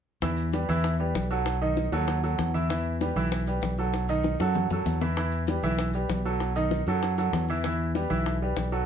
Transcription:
0.22 0.65 E2 medium
0.22 0.47 E3 medium
0.22 0.48 E4 medium
0.22 0.48 E5 medium
0.22 high bongo medium
0.22 maracas medium
0.37 maracas medium
0.53 0.66 G3 medium
0.53 0.66 G4 medium
0.53 0.66 B4 medium
0.53 high bongo medium
0.53 maracas medium
0.68 1.12 E2 medium
0.68 0.94 E3 medium
0.68 0.94 E4 medium
0.68 0.94 E5 medium
0.68 maracas soft
0.84 high bongo medium
0.84 maracas medium
0.99 1.25 G3 medium
0.99 1.25 G4 medium
0.99 1.25 B4 medium
1.15 1.87 B1 medium
1.15 high bongo medium
1.15 low bongo medium
1.15 maracas medium
1.30 1.56 F#3 medium
1.30 1.56 F#4 medium
1.30 1.56 A4 medium
1.30 maracas soft
1.46 high bongo medium
1.46 maracas medium
1.62 1.87 D#3 medium
1.62 1.87 D#4 medium
1.62 1.87 D#5 medium
1.77 high bongo medium
1.77 maracas medium
1.92 2.35 D#2 medium
1.92 2.18 F#3 medium
1.92 2.18 F#4 medium
1.92 2.18 A4 medium
1.92 high bongo soft
1.92 maracas soft
2.08 high bongo medium
2.08 maracas medium
2.23 2.49 F#3 medium
2.23 2.49 F#4 medium
2.23 2.49 A4 medium
2.23 high bongo soft
2.23 maracas medium
2.38 3.11 E2 medium
2.38 high bongo medium
2.38 low bongo medium
2.38 maracas medium
2.54 2.67 E3 medium
2.54 2.67 E4 medium
2.54 2.67 E5 medium
2.54 high bongo soft
2.54 maracas soft
2.70 2.95 E3 medium
2.70 2.95 E4 medium
2.70 2.95 E5 medium
2.70 high bongo medium
2.70 maracas medium
3.01 3.14 G3 medium
3.01 3.14 G4 medium
3.01 3.14 B4 medium
3.01 high bongo medium
3.01 maracas medium
3.16 3.59 B1 medium
3.16 3.42 E3 medium
3.16 3.42 E4 medium
3.16 3.42 E5 medium
3.16 maracas soft
3.31 high bongo medium
3.31 maracas medium
3.47 3.73 G3 medium
3.47 3.73 G4 medium
3.47 3.73 B4 medium
3.47 maracas medium
3.62 4.34 B1 medium
3.62 high bongo medium
3.62 low bongo medium
3.62 maracas medium
3.78 4.04 F#3 medium
3.78 4.04 F#4 medium
3.78 4.04 A4 medium
3.78 maracas soft
3.93 high bongo medium
3.93 maracas medium
4.08 4.34 D#3 medium
4.08 4.35 D#4 medium
4.08 4.35 D#5 medium
4.08 maracas medium
4.23 high bongo medium
4.23 maracas medium
4.39 4.68 F#2 medium
4.39 4.66 F#3 medium
4.39 4.66 F#4 medium
4.39 4.66 A4 medium
4.39 high bongo medium
4.39 maracas soft
4.54 low bongo medium
4.54 maracas medium
4.70 4.85 F#2 medium
4.70 4.97 F#3 medium
4.70 4.97 F#4 medium
4.70 4.97 A4 medium
4.70 low bongo medium
4.70 maracas medium
4.86 5.58 E2 medium
4.86 low bongo medium
4.86 maracas medium
5.01 5.14 E3 medium
5.01 5.15 E4 medium
5.01 5.15 E5 medium
5.01 low bongo medium
5.01 maracas soft
5.16 5.42 E3 medium
5.16 5.43 E4 medium
5.16 5.43 E5 medium
5.16 high bongo medium
5.16 maracas medium
5.32 maracas medium
5.47 5.61 G3 medium
5.47 5.61 G4 medium
5.47 5.61 B4 medium
5.47 high bongo medium
5.47 maracas medium
5.63 6.06 B1 medium
5.63 5.89 E3 medium
5.63 5.89 E4 medium
5.63 5.89 E5 medium
5.63 maracas soft
5.78 high bongo medium
5.78 maracas medium
5.94 6.20 G3 medium
5.94 6.20 G4 medium
5.94 6.20 B4 medium
5.94 maracas medium
6.09 6.81 B1 medium
6.09 high bongo medium
6.09 low bongo medium
6.09 maracas medium
6.25 6.51 F#3 medium
6.25 6.51 F#4 medium
6.25 6.51 A4 medium
6.25 maracas soft
6.40 high bongo medium
6.40 maracas medium
6.56 6.81 D#3 medium
6.56 6.81 D#4 medium
6.56 6.81 D#5 medium
6.56 maracas medium
6.71 high bongo medium
6.71 maracas medium
6.87 7.30 F#2 loud
6.87 7.13 F#3 medium
6.87 7.13 F#4 medium
6.87 7.13 A4 medium
6.87 high bongo soft
6.87 maracas soft
7.02 high bongo medium
7.02 maracas medium
7.18 7.43 F#3 medium
7.18 7.43 F#4 medium
7.18 7.43 A4 medium
7.18 high bongo soft
7.18 maracas medium
7.33 8.05 E2 medium
7.33 high bongo medium
7.33 low bongo medium
7.33 maracas medium
7.48 7.62 E3 medium
7.48 7.62 E4 medium
7.48 7.62 E5 medium
7.48 high bongo soft
7.48 maracas soft
7.64 7.90 E3 medium
7.64 7.90 E4 medium
7.64 7.90 E5 medium
7.64 high bongo medium
7.64 maracas medium
7.95 8.08 G3 medium
7.95 8.08 G4 medium
7.95 8.08 B4 medium
7.95 high bongo medium
7.95 maracas medium
8.10 8.53 B1 medium
8.10 8.35 E3 medium
8.10 8.35 E4 medium
8.10 8.36 E5 medium
8.10 maracas soft
8.26 high bongo medium
8.26 maracas medium
8.42 8.67 G3 medium
8.42 8.67 G4 medium
8.42 8.67 B4 medium
8.57 8.86 B1 medium
8.57 high bongo medium
8.57 low bongo medium
8.57 maracas medium
8.72 8.86 F#3 medium
8.72 8.86 F#4 medium
8.72 8.86 A4 medium
8.72 maracas soft

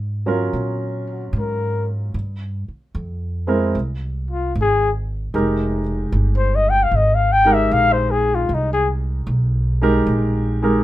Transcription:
0.00 0.51 G#2 medium
0.26 0.50 F#3 medium
0.26 0.51 C#4 medium
0.26 0.51 F4 medium
0.26 0.51 A#4 medium
0.53 1.31 A#2 medium
1.10 1.26 F#4 soft
1.33 2.11 G#2 medium
1.39 1.90 A#4 medium
2.14 2.64 G2 medium
2.68 muted upright bass stroke soft
2.95 3.72 F2 medium
3.47 3.71 G#3 medium
3.47 3.71 C4 medium
3.47 3.72 E4 medium
3.47 3.72 A#4 medium
3.75 4.52 C2 medium
4.31 4.54 F4 medium
4.55 5.31 G#1 medium
4.61 4.90 G#4 medium
5.34 6.10 F1 medium
5.34 5.81 G#3 medium
5.34 5.81 D#4 medium
5.34 5.81 G4 medium
5.34 5.81 A#4 medium
6.12 6.89 G1 medium
6.37 6.57 C5 medium
6.55 6.71 D#5 medium
6.70 6.85 G5 medium
6.83 6.97 F5 medium
6.91 7.68 G#1 medium
6.96 7.16 D#5 medium
7.15 7.34 F5 medium
7.33 7.56 G5 loud
7.45 7.68 G#3 medium
7.45 7.68 D#4 medium
7.45 7.68 G4 medium
7.45 7.69 A#4 medium
7.54 7.74 E5 medium
7.71 8.47 A#1 medium
7.71 7.94 F5 medium
7.93 8.12 C5 medium
8.11 8.36 G#4 medium
8.35 8.56 F4 medium
8.49 9.25 C2 medium
8.54 8.72 D#4 medium
8.73 8.89 G#4 medium
9.27 10.04 B1 medium
9.82 10.05 G#3 medium
9.82 10.05 D#4 medium
9.82 10.06 G4 medium
9.82 10.06 A#4 medium
10.07 10.84 A#1 medium
10.62 10.84 G#3 medium
10.62 10.84 D#4 medium
10.62 10.84 G4 medium
10.62 10.84 A#4 medium

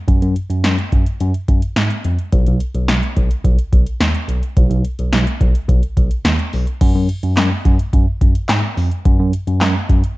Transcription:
0.08 0.20 F#2 loud
0.08 kick loud
0.08 closed hi-hat medium
0.22 0.34 F#2 medium
0.22 closed hi-hat medium
0.36 closed hi-hat medium
0.50 0.62 F#2 medium
0.50 closed hi-hat medium
0.64 0.76 F#2 medium
0.64 snare loud
0.64 closed hi-hat medium
0.78 closed hi-hat soft
0.92 1.04 F#2 medium
0.92 kick medium
0.92 closed hi-hat medium
1.06 closed hi-hat medium
1.20 1.32 F#2 loud
1.20 closed hi-hat medium
1.34 closed hi-hat medium
1.48 1.60 F#2 loud
1.48 kick medium
1.48 closed hi-hat medium
1.62 closed hi-hat medium
1.76 1.88 G#2 medium
1.76 snare loud
1.76 closed hi-hat medium
1.90 closed hi-hat medium
2.04 2.16 F2 medium
2.04 closed hi-hat medium
2.19 closed hi-hat soft
2.32 2.44 B1 loud
2.32 kick loud
2.32 closed hi-hat medium
2.46 2.58 B1 loud
2.46 closed hi-hat medium
2.60 closed hi-hat medium
2.74 2.86 B1 medium
2.74 closed hi-hat medium
2.88 3.00 B1 medium
2.88 snare loud
2.88 closed hi-hat medium
3.03 closed hi-hat soft
3.17 3.28 B1 medium
3.17 kick medium
3.17 closed hi-hat medium
3.31 closed hi-hat medium
3.45 3.56 B1 loud
3.45 kick medium
3.45 closed hi-hat medium
3.59 closed hi-hat medium
3.73 3.84 B1 medium
3.73 kick medium
3.73 closed hi-hat medium
3.86 closed hi-hat medium
4.01 4.12 D#2 medium
4.01 snare loud
4.01 closed hi-hat medium
4.15 closed hi-hat medium
4.29 4.40 B1 medium
4.29 closed hi-hat medium
4.43 closed hi-hat soft
4.57 4.69 B1 loud
4.57 kick loud
4.57 closed hi-hat medium
4.71 4.83 B1 loud
4.71 closed hi-hat medium
4.85 closed hi-hat medium
4.99 5.11 B1 medium
4.99 closed hi-hat medium
5.13 5.25 B1 loud
5.13 snare loud
5.13 closed hi-hat medium
5.27 closed hi-hat soft
5.41 5.53 B1 loud
5.41 kick medium
5.41 closed hi-hat medium
5.55 closed hi-hat medium
5.69 5.81 B1 loud
5.69 kick medium
5.69 closed hi-hat medium
5.83 closed hi-hat medium
5.97 6.09 B1 medium
5.97 kick medium
5.97 closed hi-hat medium
6.11 closed hi-hat medium
6.25 6.37 D#2 loud
6.25 snare loud
6.25 closed hi-hat medium
6.39 closed hi-hat soft
6.53 6.65 B1 medium
6.53 open hi-hat medium
6.67 closed hi-hat soft
6.81 6.93 F#2 loud
6.81 kick loud
6.81 closed hi-hat medium
6.81 crash loud
6.95 7.07 F#2 loud
7.09 closed hi-hat medium
7.23 7.35 F#2 loud
7.23 closed hi-hat medium
7.37 7.49 F#2 loud
7.37 snare loud
7.37 clap medium
7.37 closed hi-hat medium
7.65 7.77 F#2 loud
7.65 kick loud
7.65 closed hi-hat medium
7.79 closed hi-hat medium
7.93 8.05 F#2 loud
7.93 kick medium
7.93 closed hi-hat medium
8.21 8.33 F#2 medium
8.21 kick loud
8.21 closed hi-hat medium
8.35 closed hi-hat medium
8.49 8.61 G#2 medium
8.49 snare loud
8.49 clap medium
8.49 closed hi-hat medium
8.77 8.89 F2 medium
8.77 open hi-hat medium
8.91 closed hi-hat soft
9.05 9.17 F#2 loud
9.05 kick loud
9.05 closed hi-hat medium
9.19 9.31 F#2 loud
9.33 closed hi-hat medium
9.47 9.59 F#2 medium
9.47 closed hi-hat medium
9.61 9.73 F#2 loud
9.61 snare loud
9.61 clap medium
9.61 closed hi-hat medium
9.89 10.01 F#2 loud
9.89 kick loud
9.89 closed hi-hat medium
10.04 closed hi-hat medium

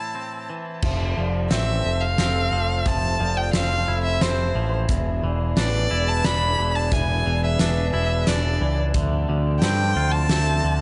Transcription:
0.00 0.49 A2 soft
0.00 0.48 E3 soft
0.00 0.14 C4 soft
0.00 0.83 E4 medium
0.00 0.46 A5 medium
0.15 0.83 C4 soft
0.50 0.83 E3 soft
0.82 1.13 F1 medium
0.82 4.85 F3 medium
0.82 1.16 F3 medium
0.82 4.85 C4 medium
0.82 4.85 A4 medium
0.82 1.17 E5 medium
0.82 kick medium
0.82 crash medium
1.17 1.47 F1 medium
1.17 2.51 F3 medium
1.17 1.51 D5 medium
1.51 1.81 A1 medium
1.51 2.18 C4 medium
1.51 2.19 C5 medium
1.51 2.02 E5 medium
1.51 snare medium
1.51 closed hi-hat medium
1.85 2.15 F1 medium
2.01 2.89 F5 medium
2.18 2.48 F1 medium
2.18 3.53 C4 medium
2.18 2.86 E6 medium
2.18 snare medium
2.18 closed hi-hat medium
2.52 2.82 F1 medium
2.52 2.85 F3 medium
2.86 3.16 F1 medium
2.86 3.19 F3 medium
2.86 3.20 E5 medium
2.86 3.39 A5 medium
2.86 kick loud
2.86 closed hi-hat medium
3.20 3.50 F1 medium
3.20 4.54 F3 medium
3.20 3.54 D5 medium
3.37 3.54 G5 medium
3.53 3.84 F1 medium
3.53 4.20 C4 medium
3.53 4.22 C5 medium
3.53 4.01 F5 medium
3.53 snare medium
3.53 closed hi-hat medium
3.88 4.18 F1 medium
3.88 5.60 E4 medium
4.05 4.24 E5 medium
4.21 4.51 F1 medium
4.21 4.89 C4 medium
4.21 4.73 C5 medium
4.21 4.88 E5 medium
4.21 snare medium
4.21 closed hi-hat medium
4.55 4.85 A1 medium
4.55 4.89 F3 medium
4.89 5.19 E1 medium
4.89 6.58 E2 medium
4.89 8.91 E3 medium
4.89 8.91 B3 medium
4.89 10.81 D4 medium
4.89 8.91 G#4 medium
4.89 5.23 E5 medium
4.89 kick medium
4.89 closed hi-hat medium
5.23 5.53 E1 medium
5.23 6.57 E3 medium
5.23 5.57 D5 medium
5.56 5.87 A1 medium
5.56 6.24 D4 medium
5.56 6.24 B4 medium
5.56 6.10 D5 medium
5.56 snare medium
5.56 closed hi-hat medium
5.91 6.21 E1 medium
5.91 7.60 E4 medium
6.08 6.26 A5 medium
6.24 6.55 E1 medium
6.24 7.60 D4 medium
6.24 6.92 D5 medium
6.24 6.77 B5 loud
6.24 snare medium
6.24 closed hi-hat medium
6.58 6.88 E1 medium
6.58 7.25 E3 medium
6.75 6.94 A5 medium
6.92 7.22 E1 medium
6.92 8.61 E2 medium
6.92 7.26 E5 medium
6.92 7.43 G#5 medium
6.92 kick loud
6.92 closed hi-hat medium
7.26 7.56 E1 medium
7.26 8.60 E3 medium
7.26 7.60 D5 medium
7.44 7.90 E5 medium
7.59 7.90 E1 medium
7.59 8.28 D4 medium
7.59 8.27 B4 medium
7.59 snare medium
7.59 closed hi-hat medium
7.93 8.24 E1 medium
7.93 8.95 E4 medium
7.93 8.29 E5 medium
8.27 8.57 E1 medium
8.27 9.62 D4 medium
8.27 8.95 D5 medium
8.27 8.78 D5 medium
8.27 snare medium
8.27 closed hi-hat medium
8.61 8.91 C#2 medium
8.61 8.95 E3 medium
8.94 9.25 D2 medium
8.94 9.28 D3 medium
8.94 10.81 F3 medium
8.94 10.81 C4 medium
8.94 10.81 A4 medium
8.94 9.29 E5 medium
8.94 kick loud
8.94 closed hi-hat medium
9.29 9.59 D2 medium
9.29 10.63 D3 medium
9.29 9.63 D5 medium
9.61 9.92 G2 medium
9.61 10.30 C4 medium
9.61 10.30 C5 medium
9.61 10.14 G5 medium
9.61 snare medium
9.61 closed hi-hat medium
9.96 10.26 D2 medium
9.96 10.81 F4 medium
10.12 10.81 A5 loud
10.29 10.60 D2 medium
10.29 10.81 C4 medium
10.29 10.81 E5 medium
10.29 snare medium
10.29 closed hi-hat medium
10.64 10.81 D2 medium
10.64 10.81 D3 medium

